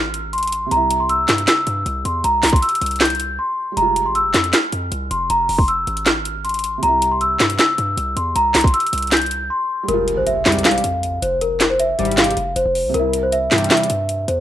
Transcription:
Already playing: 808-style bass G#1, felt piano G3 G#3 F4, celesta F6
0.14 closed hi-hat
0.33 celesta C6, closed hi-hat
0.38 closed hi-hat
0.43 closed hi-hat
0.47 closed hi-hat
0.52 closed hi-hat
0.66 felt piano C3
0.71 808-style bass C2, felt piano G3, celesta A#5, closed hi-hat
0.77 felt piano E4
0.91 closed hi-hat
1.00 celesta C6
1.09 celesta E6, closed hi-hat
1.28 808-style bass G2, snare, clap, closed hi-hat
1.38 closed hi-hat
1.48 celesta E6, snare, clap, closed hi-hat
1.67 808-style bass G2, closed hi-hat
1.86 808-style bass C2, closed hi-hat
2.05 808-style bass E2, celesta C6, closed hi-hat
2.24 808-style bass C2, celesta A#5, closed hi-hat
2.43 808-style bass C2, snare, clap, closed hi-hat, open hi-hat
2.50 celesta C6, kick, closed hi-hat
2.56 closed hi-hat
2.62 celesta E6, closed hi-hat
2.69 closed hi-hat
2.75 closed hi-hat
2.81 808-style bass C2, closed hi-hat
2.86 closed hi-hat
2.91 closed hi-hat
2.96 closed hi-hat
3.00 celesta G6, snare, clap, closed hi-hat
3.05 closed hi-hat
3.10 closed hi-hat
3.15 closed hi-hat
3.20 closed hi-hat
3.39 celesta C6
3.72 felt piano G3
3.77 808-style bass F1, felt piano G#3, celesta A#5, closed hi-hat
3.82 felt piano F4
3.96 closed hi-hat
4.06 808-style bass G#1, celesta C6
4.15 celesta E6, closed hi-hat
4.20 808-style bass F1
4.34 808-style bass F2, snare, clap, closed hi-hat
4.44 closed hi-hat
4.53 celesta F6, snare, clap, closed hi-hat
4.72 808-style bass F2, closed hi-hat
4.92 808-style bass C2, closed hi-hat
5.11 808-style bass F1, celesta C6, closed hi-hat
5.30 808-style bass F1, celesta A#5, closed hi-hat
5.49 808-style bass F1, open hi-hat
5.58 celesta C6, kick
5.68 celesta E6, closed hi-hat
5.87 808-style bass G#1, closed hi-hat
5.97 closed hi-hat
6.06 celesta F6, snare, clap, closed hi-hat
6.25 closed hi-hat
6.45 celesta C6, closed hi-hat
6.49 closed hi-hat
6.54 closed hi-hat
6.59 closed hi-hat
6.64 closed hi-hat
6.78 felt piano C3
6.83 808-style bass C2, felt piano G3, celesta A#5, closed hi-hat
6.88 felt piano E4
7.02 closed hi-hat
7.12 celesta C6
7.21 celesta E6, closed hi-hat
7.40 808-style bass G2, snare, clap, closed hi-hat
7.50 closed hi-hat
7.59 celesta E6, snare, clap, closed hi-hat
7.78 808-style bass G2, closed hi-hat
7.97 808-style bass C2, closed hi-hat
8.16 808-style bass E2, celesta C6, closed hi-hat
8.36 808-style bass C2, celesta A#5, closed hi-hat
8.55 808-style bass C2, snare, clap, closed hi-hat, open hi-hat
8.61 celesta C6, kick, closed hi-hat
8.67 closed hi-hat
8.74 celesta E6, closed hi-hat
8.80 closed hi-hat
8.87 closed hi-hat
8.93 808-style bass C2, closed hi-hat
8.98 closed hi-hat
9.02 closed hi-hat
9.07 closed hi-hat
9.12 celesta G6, snare, clap, closed hi-hat
9.17 closed hi-hat
9.22 closed hi-hat
9.26 closed hi-hat
9.31 closed hi-hat
9.50 celesta C6
9.83 felt piano G3
9.88 808-style bass F1, felt piano G#3, celesta A#4, closed hi-hat, impact
9.93 felt piano F4
10.08 closed hi-hat
10.17 808-style bass G#1, celesta C5
10.27 celesta E5, closed hi-hat
10.31 808-style bass F1
10.46 analog polysynth C2 G#2 G3, 808-style bass F2, snare, clap, closed hi-hat
10.52 closed hi-hat
10.59 closed hi-hat
10.65 celesta F5, snare, clap, closed hi-hat
10.71 closed hi-hat
10.78 closed hi-hat
10.84 808-style bass F2, closed hi-hat
11.03 closed hi-hat
11.22 808-style bass F1, celesta C5, closed hi-hat
11.41 celesta A#4, closed hi-hat
11.60 snare, clap, closed hi-hat
11.70 celesta C5
11.79 celesta E5, closed hi-hat
11.99 808-style bass G#1, analog polysynth C2 G#2 G3, closed hi-hat
12.05 closed hi-hat
12.11 closed hi-hat
12.18 celesta F5, snare, clap, closed hi-hat
12.24 closed hi-hat
12.31 closed hi-hat
12.37 808-style bass F1, closed hi-hat
12.56 808-style bass F1, celesta C5, closed hi-hat
12.66 808-style bass F1
12.75 open hi-hat
12.85 808-style bass C2
12.89 felt piano C3
12.94 808-style bass C2, felt piano G3, celesta A#4, closed hi-hat
12.99 felt piano E4
13.13 closed hi-hat
13.23 celesta C5
13.32 celesta E5, closed hi-hat
13.51 analog polysynth E2 C3 G3, 808-style bass G2, snare, clap, closed hi-hat
13.58 closed hi-hat
13.64 closed hi-hat
13.70 celesta E5, snare, clap, closed hi-hat
13.77 closed hi-hat
13.83 closed hi-hat
13.90 808-style bass G2, closed hi-hat
14.09 closed hi-hat
14.28 808-style bass E2, celesta C5, closed hi-hat

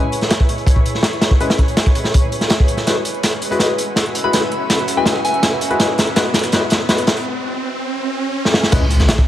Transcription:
Already playing: ambient pad E4 G#4 B4 C#5, synth bell G#5, riser
0.12 closed hi-hat, open hi-hat
0.21 snare, closed hi-hat
0.31 snare, closed hi-hat
0.40 kick, snare
0.49 closed hi-hat
0.58 closed hi-hat
0.66 kick, closed hi-hat
0.76 kick
0.86 closed hi-hat
0.95 snare
1.03 snare, closed hi-hat
1.13 closed hi-hat
1.21 snare, closed hi-hat
1.31 kick
1.40 grand piano G#3 C#4 E4 B4, closed hi-hat
1.50 snare, closed hi-hat
1.58 kick, closed hi-hat
1.68 closed hi-hat
1.77 snare, closed hi-hat
1.86 kick, closed hi-hat
1.95 snare, closed hi-hat
2.04 snare
2.14 kick, closed hi-hat
2.32 closed hi-hat
2.41 snare, closed hi-hat
2.50 snare, closed hi-hat
2.60 kick
2.68 closed hi-hat
2.77 snare, closed hi-hat
2.87 grand piano G#3 E4 F#4 B4, ambient pad C#4 F#4 E5, snare, closed hi-hat
3.05 closed hi-hat, open hi-hat
3.14 closed hi-hat
3.23 snare, closed hi-hat
3.33 snare
3.42 closed hi-hat
3.51 grand piano G#3 E4 F#4 B4, closed hi-hat
3.59 grand piano G#3 E4 F#4 B4, snare, closed hi-hat
3.78 closed hi-hat
3.96 snare, closed hi-hat
4.06 closed hi-hat
4.15 closed hi-hat
4.24 grand piano G#3 E4 F#4 B4, synth bell B5
4.33 grand piano G#3 E4 F#4 B4, snare, closed hi-hat
4.43 snare
4.52 closed hi-hat
4.70 snare, closed hi-hat
4.79 closed hi-hat
4.88 snare, closed hi-hat
4.97 grand piano G#3 E4 F#4 B4, synth bell G#5
5.06 grand piano G#3 E4 F#4 B4, snare, closed hi-hat
5.16 snare
5.25 synth bell G#5, closed hi-hat
5.34 closed hi-hat
5.43 snare, closed hi-hat
5.61 closed hi-hat
5.70 grand piano G#3 E4 F#4 B4, closed hi-hat
5.79 grand piano G#3 E4 F#4 B4, snare, closed hi-hat
5.98 snare, closed hi-hat, open hi-hat
6.07 closed hi-hat
6.16 grand piano G#3 E4 F#4 B4, snare, closed hi-hat
6.25 snare
6.34 snare, closed hi-hat
6.39 snare, closed hi-hat
6.43 snare, closed hi-hat
6.52 grand piano G#3 E4 F#4 B4, snare, closed hi-hat
6.70 snare, closed hi-hat
6.89 grand piano G#3 E4 F#4 B4, snare, closed hi-hat, open hi-hat
6.98 closed hi-hat
7.07 snare, closed hi-hat
7.17 open hi-hat
8.45 snare
8.54 snare
8.63 snare
8.72 808-style bass C#2, grand piano G#3 C#4 E4 B4, ambient pad E4 G#4 C#5, kick, closed hi-hat, crash, impact
8.90 closed hi-hat, open hi-hat
9.00 808-style bass C#2, snare, closed hi-hat
9.09 snare, closed hi-hat
9.18 kick, snare

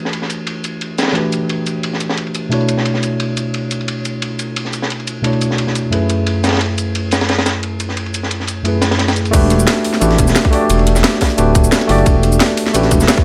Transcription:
Already playing: tine electric piano E3 A3 D4 F#4 G4 B4
0.05 snare
0.13 closed hi-hat, ride
0.22 snare
0.30 closed hi-hat, ride, shaker
0.47 closed hi-hat, ride
0.64 closed hi-hat, ride, shaker
0.81 closed hi-hat, ride
0.98 snare, closed hi-hat, ride, shaker
1.03 snare, ride
1.07 snare, ride
1.11 tine electric piano E3 A3, snare, ride
1.15 tine electric piano D4 F#4 G4 B4, closed hi-hat, ride
1.32 closed hi-hat, ride, shaker
1.49 closed hi-hat, ride
1.66 closed hi-hat, ride, shaker
1.83 closed hi-hat, ride
1.93 snare
2.00 closed hi-hat, ride, shaker
2.10 snare
2.17 closed hi-hat, ride
2.27 ride
2.35 closed hi-hat, ride, shaker
2.49 tine electric piano B2 A3 D4 E4 F#4, closed hi-hat, ride
2.54 tine electric piano C#5
2.61 ride
2.69 closed hi-hat, ride, shaker
2.78 snare
2.85 closed hi-hat, ride
2.94 snare
3.03 closed hi-hat, ride, shaker
3.20 closed hi-hat, ride
3.37 closed hi-hat, ride, shaker
3.54 closed hi-hat, ride
3.71 closed hi-hat, ride, shaker
3.81 ride
3.88 closed hi-hat, ride
4.05 closed hi-hat, ride, shaker
4.22 closed hi-hat, ride
4.39 closed hi-hat, ride, shaker
4.56 closed hi-hat, ride
4.65 snare
4.73 closed hi-hat, ride, shaker
4.82 snare
4.90 closed hi-hat, ride
5.00 ride
5.07 closed hi-hat, ride, shaker
5.22 tine electric piano B2 A3 D4 E4 F#4, closed hi-hat, ride
5.27 tine electric piano C#5
5.33 ride
5.41 closed hi-hat, ride, shaker
5.51 snare
5.58 closed hi-hat, ride
5.67 snare
5.75 closed hi-hat, ride, shaker
5.90 tine electric piano F#2 A3 C#4 E4 G#4, closed hi-hat, ride
5.95 tine electric piano B4
6.10 closed hi-hat, ride, shaker
6.26 closed hi-hat, ride
6.44 snare, closed hi-hat, ride, shaker
6.48 snare, ride
6.53 snare, ride
6.57 snare, ride
6.61 closed hi-hat, ride
6.78 closed hi-hat, ride, shaker
6.95 closed hi-hat, ride
7.11 snare, closed hi-hat, ride, shaker
7.21 snare, ride
7.29 snare, closed hi-hat, ride
7.38 snare, ride
7.46 snare, closed hi-hat, ride, shaker
7.63 closed hi-hat, ride
7.80 closed hi-hat, ride, shaker
7.89 snare
7.97 closed hi-hat, ride
8.06 ride
8.14 closed hi-hat, ride, shaker
8.23 snare
8.31 closed hi-hat, ride
8.40 snare
8.47 closed hi-hat, ride, shaker
8.63 tine electric piano F#2 A3 C#4 E4 G#4, closed hi-hat, ride
8.68 tine electric piano B4
8.82 snare, closed hi-hat, ride, shaker
8.91 snare, ride
8.99 snare, closed hi-hat, ride
9.08 snare, ride, shaker
9.16 closed hi-hat, shaker
9.25 ride, shaker
9.31 analog synth bass E1, tine electric piano A3 D4 F#4 G4, kick, closed hi-hat, crash, ride, shaker
9.36 tine electric piano B4
9.50 closed hi-hat, ride, shaker
9.60 shaker
9.67 snare, closed hi-hat, ride
9.84 open hi-hat, ride
9.94 snare
10.00 analog synth bass A1, tine electric piano A3 D4 F#4 G4 B4, closed hi-hat, ride, shaker
10.11 snare
10.19 analog synth bass E1, kick, closed hi-hat, ride, shaker
10.28 snare, shaker
10.36 snare, closed hi-hat, ride, shaker
10.45 kick, ride
10.51 tine electric piano A3 D4 F#4 G4, open hi-hat, ride
10.55 tine electric piano D5
10.70 analog synth bass E1, closed hi-hat, ride, shaker
10.79 ride
10.87 closed hi-hat, ride, shaker
10.96 snare, shaker
11.04 snare, closed hi-hat, ride
11.13 snare
11.21 kick, snare, open hi-hat, ride
11.30 snare
11.37 analog synth bass D1, tine electric piano A3 D4 F#4 G4 B4, closed hi-hat, ride, shaker
11.55 kick, closed hi-hat, ride, shaker
11.64 shaker
11.72 snare, closed hi-hat, ride, shaker
11.81 snare
11.87 analog synth bass F#1, tine electric piano A3 D4 F#4 G4, open hi-hat, ride
11.92 tine electric piano D5
11.98 ride
12.06 analog synth bass E1, kick, closed hi-hat, ride, shaker
12.23 closed hi-hat, ride, shaker
12.32 shaker
12.40 snare, closed hi-hat, ride
12.57 open hi-hat, ride
12.66 snare
12.73 analog synth bass A1, tine electric piano A3 D4 F#4 G4 B4, closed hi-hat, ride, shaker
12.83 snare
12.91 analog synth bass E1, kick, closed hi-hat, ride, shaker
13.00 snare, shaker
13.08 snare, closed hi-hat, ride, shaker
13.18 kick, ride

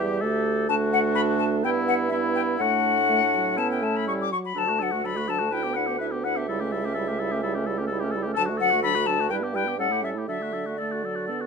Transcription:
Already playing: bassoon E2, clarinet G4, oboe G4, flute E5
0.00 french horn G3
0.21 bassoon D2, french horn A3, clarinet G4, oboe A4
0.69 bassoon D2, french horn A3, clarinet D4, oboe F#4, flute A5
0.93 flute F#5
1.15 flute B5
1.38 flute A5
1.63 bassoon G2, french horn B3, clarinet E4, oboe E4, flute G5
1.88 flute F#5
2.09 french horn B3, clarinet E4, oboe E4, flute E5
2.35 flute G5
2.57 bassoon A2, french horn A3, clarinet D4, flute F#5
2.62 oboe F#4
3.09 french horn A3
3.34 french horn F#3
3.57 french horn B3, clarinet C#4, oboe E4, flute A5
3.70 flute G5
3.82 french horn A3, flute A5
3.96 flute B5
4.07 french horn G3, flute C#6
4.20 flute D6
4.32 french horn F#3, flute C#6
4.45 flute B5
4.55 bassoon D2, french horn F#3, clarinet D4, oboe A4, flute A5
4.66 french horn A3, clarinet F#4, oboe F#4
4.79 french horn F#3, clarinet D4, oboe A4, flute F#5
4.91 french horn A3, oboe F#4, clarinet F#4
5.04 french horn F#3, clarinet D4, oboe A4, flute B5
5.16 french horn A3, clarinet F#4, oboe F#4
5.28 french horn F#3, clarinet D4, oboe A4, flute A5
5.39 french horn A3, oboe F#4, clarinet F#4
5.51 french horn D4, clarinet E4, oboe B4, flute G5
5.63 french horn B3, clarinet D4, oboe G4
5.74 french horn D4, clarinet E4, oboe B4, flute F#5
5.87 french horn B3, clarinet D4, oboe G4
5.98 french horn D4, clarinet E4, oboe B4, flute E5
6.12 french horn B3, clarinet D4, oboe G4
6.23 french horn D4, clarinet E4, oboe B4, flute F#5
6.36 french horn B3, clarinet D4, oboe G4, flute E5
6.48 bassoon C#2, french horn G3, clarinet E4, oboe A4
6.60 french horn A3, clarinet C#4, oboe G4
6.72 french horn G3, clarinet E4, oboe A4
6.84 french horn A3, clarinet C#4, oboe G4
6.94 french horn G3, clarinet E4, oboe A4
7.07 french horn A3, clarinet C#4, oboe G4
7.19 french horn G3, clarinet E4, oboe A4
7.31 french horn A3, clarinet C#4, oboe G4
7.43 french horn G3, clarinet E4, oboe A4
7.54 french horn A3, clarinet C#4, oboe G4
7.66 french horn G3, clarinet E4, oboe A4
7.77 french horn A3, clarinet C#4, oboe G4
7.87 french horn G3, oboe A4
7.92 clarinet E4
8.00 french horn A3, clarinet C#4, oboe G4
8.11 french horn G3, oboe A4
8.16 clarinet E4
8.22 french horn A3, oboe G4
8.27 clarinet C#4
8.34 bassoon D2, french horn F#3, oboe A4, flute A5
8.38 clarinet D4
8.45 french horn A3, oboe F#4
8.49 clarinet F#4
8.57 french horn F#3, clarinet D4, oboe A4, flute F#5
8.70 french horn A3, oboe F#4, clarinet F#4
8.82 french horn F#3, clarinet D4, oboe A4, flute B5
8.95 french horn A3, oboe F#4, clarinet F#4
9.06 french horn F#3, clarinet D4, oboe A4, flute A5
9.19 french horn A3, oboe F#4, clarinet F#4
9.29 bassoon G2, french horn G3, clarinet E4, oboe B4, flute G5
9.42 french horn B3, clarinet G4, oboe G4
9.54 french horn G3, clarinet E4, oboe B4, flute G5
9.67 french horn B3, clarinet G4, oboe G4
9.78 bassoon A2, french horn G3, clarinet C#4, oboe A4, flute F#5
9.90 french horn A3, clarinet E4, oboe G4
10.02 french horn G3, clarinet C#4, oboe A4, flute E5
10.15 french horn A3, clarinet E4, oboe G4
10.27 bassoon D3, french horn F#3, clarinet D4, oboe A4, flute E5
10.40 french horn A3, clarinet F#4, oboe F#4
10.52 french horn F#3, clarinet D4, oboe A4
10.65 french horn A3, oboe F#4, clarinet F#4
10.78 french horn A3, clarinet D4, oboe A4, flute D5
10.91 oboe F#4, clarinet F#4
11.04 french horn F#3, clarinet D4, oboe A4
11.15 oboe F#4, clarinet F#4
11.27 french horn B3, clarinet D4, oboe A4
11.40 clarinet F#4, oboe F#4

